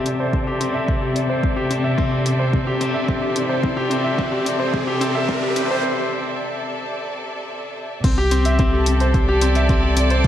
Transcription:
Already playing: string section C3 A4 D5 E5, grand piano C4 G4 E5, riser
0.06 grand piano C4, closed hi-hat
0.20 grand piano C5
0.33 grand piano C4, kick
0.47 grand piano G4
0.60 grand piano C4, closed hi-hat
0.74 grand piano E5
0.88 grand piano C4, kick
1.02 grand piano G4
1.15 grand piano C4, closed hi-hat
1.29 grand piano C5
1.43 grand piano C4, kick
1.56 grand piano G4
1.70 grand piano C4, closed hi-hat
1.84 grand piano E5
1.98 grand piano C4, kick
2.11 grand piano G4
2.25 grand piano C4, closed hi-hat
2.39 grand piano C5
2.53 grand piano C4, kick
2.67 grand piano G4
2.81 grand piano C4, closed hi-hat
2.94 grand piano E5
3.08 grand piano C4, kick
3.22 grand piano G4
3.36 grand piano C4, closed hi-hat
3.49 grand piano C5
3.63 grand piano C4, kick
3.77 grand piano G4
3.90 grand piano C4, closed hi-hat
4.04 grand piano E5
4.18 grand piano C4, kick
4.32 grand piano G4
4.45 grand piano C4, closed hi-hat
4.59 grand piano C5
4.73 grand piano C4, kick
4.87 grand piano G4
5.01 grand piano C4, closed hi-hat
5.15 grand piano E5
5.28 grand piano C4, kick
5.42 grand piano G4
5.56 grand piano C4, closed hi-hat
5.70 grand piano C5
8.04 sub bass C2, grand piano C4, kick, closed hi-hat, crash
8.18 grand piano G4
8.31 grand piano C4, closed hi-hat
8.45 grand piano E5, closed hi-hat
8.59 grand piano C4, kick, closed hi-hat
8.70 grand piano G4, string section A4
8.86 grand piano C4, closed hi-hat
9.00 grand piano C5, closed hi-hat
9.14 grand piano C4, kick, closed hi-hat
9.21 string section D5
9.28 grand piano G4
9.41 grand piano C4, closed hi-hat
9.55 grand piano E5, closed hi-hat
9.69 grand piano C4, kick, closed hi-hat
9.83 grand piano G4
9.97 grand piano C4, closed hi-hat
10.10 grand piano C5, closed hi-hat
10.24 kick, closed hi-hat

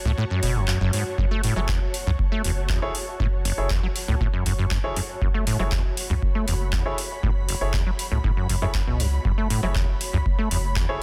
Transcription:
Already playing: ambient pad F#4 C#5 A5
0.05 analog synth bass C#2, acid bass A2
0.18 acid bass A2
0.30 acid bass F#2
0.43 analog synth bass F#1, acid bass B2, open hi-hat
0.55 acid bass F#2
0.68 acid bass F#2, clap
0.81 analog synth bass F#1, acid bass F#2
0.93 acid bass G#2, open hi-hat
1.18 analog synth bass F#1, acid bass F#2, kick
1.31 acid bass A3
1.44 acid bass A2, open hi-hat
1.56 analog synth bass F#1, acid bass F#3, grand piano E4 G#4 A4 C#5
1.69 acid bass E2, kick, clap
1.94 open hi-hat
2.07 analog synth bass C#2, acid bass F#2
2.19 kick
2.32 acid bass A3
2.44 analog synth bass F#1, acid bass E2, open hi-hat
2.70 acid bass E2, kick, clap
2.82 analog synth bass F#1, grand piano E4 G#4 A4 C#5
2.95 open hi-hat
3.20 analog synth bass F#1, acid bass A2, kick
3.45 acid bass F#1, open hi-hat
3.58 analog synth bass F#1, grand piano E4 G#4 A4 C#5
3.70 acid bass E2, kick, clap
3.83 acid bass F#3
3.96 open hi-hat
4.08 analog synth bass C#2, acid bass A2
4.21 acid bass A2, kick
4.33 acid bass F#2
4.46 analog synth bass F#1, acid bass F#2, kick, open hi-hat
4.59 acid bass F#2
4.71 acid bass F#2, kick, clap
4.84 analog synth bass F#1, grand piano E4 G#4 A4 C#5
4.96 acid bass F#2, open hi-hat
5.22 analog synth bass F#1, acid bass F#2, kick
5.34 acid bass A3
5.41 ambient pad B5
5.47 acid bass A2, open hi-hat
5.59 analog synth bass F#1, acid bass F#3, grand piano E4 G#4 A4 C#5
5.72 acid bass E2, kick, clap
5.97 open hi-hat
6.10 analog synth bass C#2, acid bass F#2
6.22 kick
6.35 acid bass A3
6.48 analog synth bass F#1, acid bass E2, open hi-hat
6.73 acid bass E2, kick, clap
6.86 analog synth bass F#1, grand piano E4 G#4 A4 C#5
6.98 open hi-hat
7.23 analog synth bass F#1, acid bass A2, kick
7.49 acid bass F#1, open hi-hat
7.61 analog synth bass F#1, grand piano E4 G#4 A4 C#5
7.74 acid bass E2, kick, clap
7.86 acid bass F#3
7.99 open hi-hat
8.12 analog synth bass C#2, acid bass A2
8.24 acid bass A2, kick
8.37 acid bass F#2
8.49 analog synth bass F#1, acid bass F#2, kick, open hi-hat
8.62 acid bass F#2, grand piano E4 G#4 A4 C#5
8.75 acid bass F#2, kick, clap
8.87 analog synth bass C#2, acid bass B2
9.00 acid bass F#2, open hi-hat
9.25 analog synth bass F#1, acid bass F#2, kick
9.38 acid bass A3
9.50 acid bass A2, open hi-hat
9.63 analog synth bass F#1, acid bass F#3, grand piano E4 G#4 A4 C#5
9.75 acid bass E2, kick, clap
10.01 open hi-hat
10.13 analog synth bass C#2, acid bass F#2
10.26 kick
10.39 acid bass A3
10.51 analog synth bass F#1, acid bass E2, open hi-hat
10.76 acid bass E2, kick, clap
10.89 analog synth bass F#1, grand piano E4 G#4 A4 C#5

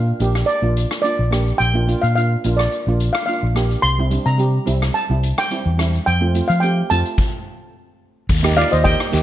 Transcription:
Already playing: fingered electric bass A#2, steel pan F4 F5
0.20 fingered electric bass A#1, steel pan A#3 D4 G4, closed hi-hat
0.35 cross-stick, closed hi-hat
0.46 steel pan D5, closed hi-hat
0.62 fingered electric bass A#1, steel pan A#3 D4 F4
0.77 closed hi-hat
0.91 cross-stick, closed hi-hat
1.02 steel pan A#3 D4 F4 D5, closed hi-hat
1.19 fingered electric bass A#1
1.31 steel pan A#3 D4 G4, cross-stick, closed hi-hat
1.48 closed hi-hat
1.58 fingered electric bass A#1, steel pan G5, closed hi-hat
1.74 steel pan A#3 D4 F4
1.87 steel pan A#3 D4 F4, closed hi-hat
2.02 fingered electric bass A#2, steel pan F5, closed hi-hat
2.15 steel pan A#3 D4 F4 F5, closed hi-hat
2.44 fingered electric bass A#1, steel pan A#3 D4 F4, closed hi-hat
2.57 steel pan D5, cross-stick, closed hi-hat
2.72 closed hi-hat
2.87 fingered electric bass A#1, steel pan A#3 D4 F4
3.00 closed hi-hat
3.13 steel pan F5, cross-stick, closed hi-hat
3.26 steel pan A#3 D4 F4 F5, closed hi-hat
3.43 fingered electric bass A#1
3.55 steel pan A#3 D4 G4, cross-stick, closed hi-hat
3.71 closed hi-hat
3.82 fingered electric bass C2, steel pan C6, closed hi-hat
3.98 steel pan G3 C4 E4
4.11 steel pan G3 C4 D4, closed hi-hat
4.26 fingered electric bass C3, steel pan A#5, closed hi-hat
4.38 steel pan G3 C4 G4, closed hi-hat
4.66 fingered electric bass C2, steel pan G3 C4 E4, closed hi-hat
4.82 cross-stick, closed hi-hat
4.94 steel pan A5, closed hi-hat
5.09 fingered electric bass C2, steel pan G3 C4 E4
5.23 closed hi-hat
5.38 steel pan G5, cross-stick, closed hi-hat
5.51 steel pan G3 C4 E4, closed hi-hat
5.66 fingered electric bass E2
5.78 steel pan G3 C4 E4, cross-stick, closed hi-hat
5.94 closed hi-hat
6.06 fingered electric bass F2, steel pan G5, closed hi-hat
6.21 steel pan A3 C4 F4
6.34 steel pan A3 C4 F4, closed hi-hat
6.48 fingered electric bass F3, steel pan F5, closed hi-hat
6.60 steel pan A3 C4 G4 G5, closed hi-hat
6.90 fingered electric bass F2, steel pan A3 C4 F4 A5, closed hi-hat
7.05 closed hi-hat
7.18 kick, crash
8.29 fingered electric bass D#2, kick, crash, long guiro
8.43 steel pan A#3 D#4 G4, cross-stick
8.57 steel pan A#3 D#4 F4 D5 F5, closed hi-hat
8.71 fingered electric bass D#2, steel pan C5 D#5, closed hi-hat
8.84 steel pan A#3 D#4 G4 D#5 G5, kick, closed hi-hat, short guiro
9.00 cross-stick
9.12 fingered electric bass D#2, steel pan A#3 D#4 G4, closed hi-hat, short guiro

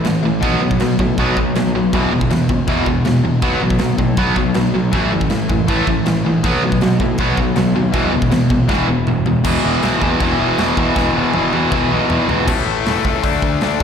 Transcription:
0.04 picked electric bass A1, distorted electric guitar A2 E3, snare, crash
0.23 picked electric bass A1, distorted electric guitar A2 E3
0.40 picked electric bass B1, distorted electric guitar B2 F#3 B3, kick, crash
0.61 picked electric bass A1, distorted electric guitar B2 F#3
0.71 kick
0.80 picked electric bass B2, distorted electric guitar B2 F#3, snare, crash
0.99 picked electric bass A2, distorted electric guitar B2 F#3, kick
1.18 picked electric bass B1, distorted electric guitar B2 F#3 B3, kick, crash
1.37 picked electric bass B1, distorted electric guitar B2 F#3, kick
1.55 picked electric bass B1, distorted electric guitar B2 F#3, snare, crash
1.74 picked electric bass B1, distorted electric guitar B2 F#3
1.93 picked electric bass E1, distorted electric guitar E2 B2 E3, kick, crash
2.12 picked electric bass C#2, distorted electric guitar E2 B2
2.21 kick
2.30 distorted electric guitar E2 B2, picked electric bass E2, snare, crash
2.49 picked electric bass C#2, distorted electric guitar E2 B2, kick
2.67 picked electric bass E1, distorted electric guitar E2 B2 E3, kick, crash
2.86 picked electric bass E1, distorted electric guitar E2 B2, kick
3.05 picked electric bass E1, distorted electric guitar E2 B2, snare, crash
3.24 picked electric bass E1, distorted electric guitar E2 B2
3.42 picked electric bass B1, distorted electric guitar B2 F#3 B3, kick, crash
3.60 picked electric bass A1, distorted electric guitar B2 F#3
3.70 kick
3.79 distorted electric guitar B2 F#3, picked electric bass B2, snare, crash
3.98 picked electric bass A2, distorted electric guitar B2 F#3, kick
4.17 picked electric bass B1, distorted electric guitar B2 F#3 B3, kick, crash
4.36 picked electric bass B1, distorted electric guitar B2 F#3, kick
4.54 picked electric bass B1, distorted electric guitar B2 F#3, snare, crash
4.74 picked electric bass B1, distorted electric guitar B2 F#3
4.92 picked electric bass A1, distorted electric guitar A2 E3 A3, kick, crash
5.11 picked electric bass F#1, distorted electric guitar A2 E3
5.21 kick
5.30 distorted electric guitar A2 E3, picked electric bass A2, snare, crash
5.49 picked electric bass F#2, distorted electric guitar A2 E3, kick
5.67 picked electric bass A1, distorted electric guitar A2 E3 A3, kick, crash
5.86 picked electric bass A1, distorted electric guitar A2 E3, kick
6.05 picked electric bass A1, distorted electric guitar A2 E3, snare, crash
6.25 picked electric bass A#1, distorted electric guitar A2 E3
6.43 picked electric bass B1, distorted electric guitar B2 F#3 B3, kick, crash
6.63 picked electric bass A1, distorted electric guitar B2 F#3
6.72 kick
6.81 distorted electric guitar B2 F#3, picked electric bass B2, snare, crash
7.00 picked electric bass A2, distorted electric guitar B2 F#3, kick
7.18 picked electric bass B1, distorted electric guitar B2 F#3 B3, kick, crash
7.37 picked electric bass B1, distorted electric guitar B2 F#3, kick
7.56 picked electric bass B1, distorted electric guitar B2 F#3, snare, crash
7.75 picked electric bass D#2, distorted electric guitar B2 F#3
7.92 picked electric bass E1, distorted electric guitar E2 B2 E3, kick, crash
8.11 picked electric bass C#2, distorted electric guitar E2 B2
8.22 kick
8.30 distorted electric guitar E2 B2, picked electric bass E2, snare, crash
8.50 picked electric bass C#2, distorted electric guitar E2 B2, kick
8.68 picked electric bass E1, distorted electric guitar E2 B2 E3, kick, snare
8.88 picked electric bass E1, distorted electric guitar E2 B2
9.07 picked electric bass E1, distorted electric guitar E2 B2, mid tom
9.26 picked electric bass E1, distorted electric guitar E2 B2, floor tom
9.44 picked electric bass E1, distorted electric guitar E2 B2 E3, kick, crash
9.64 picked electric bass E1, distorted electric guitar E2 B2 E3
9.82 picked electric bass B1, distorted electric guitar E2 B2 E3, snare, crash
10.02 picked electric bass E1, distorted electric guitar E2 B2 E3, kick
10.20 picked electric bass E1, distorted electric guitar E2 B2 E3, kick, crash
10.39 picked electric bass E1, distorted electric guitar E2 B2 E3
10.58 picked electric bass E1, distorted electric guitar E2 B2 E3, snare, crash
10.77 picked electric bass E2, distorted electric guitar E2 B2 E3, kick
10.95 picked electric bass E1, distorted electric guitar E2 B2 E3, kick, snare
11.15 distorted electric guitar E2 B2 E3
11.33 picked electric bass E1, distorted electric guitar E2 B2 E3, high tom
11.53 picked electric bass E1, distorted electric guitar E2 B2 E3, high tom
11.71 picked electric bass E1, distorted electric guitar E2 B2 E3, kick, mid tom
11.91 picked electric bass B1, distorted electric guitar E2 B2 E3
12.09 distorted electric guitar E2 B2 E3, picked electric bass E2, floor tom
12.29 picked electric bass C#2, distorted electric guitar E2 B2 E3, floor tom
12.47 picked electric bass A1, distorted electric guitar A2 E3 A3, kick, crash
12.66 picked electric bass A1
12.86 picked electric bass E1, distorted electric guitar A2 E3 A3, snare, open hi-hat
13.05 picked electric bass C#2, distorted electric guitar A2 E3 A3, kick
13.23 picked electric bass D2, distorted electric guitar D3 A3 D4, kick, open hi-hat
13.42 picked electric bass D2, kick
13.61 picked electric bass D2, distorted electric guitar D3 A3 D4, snare, open hi-hat

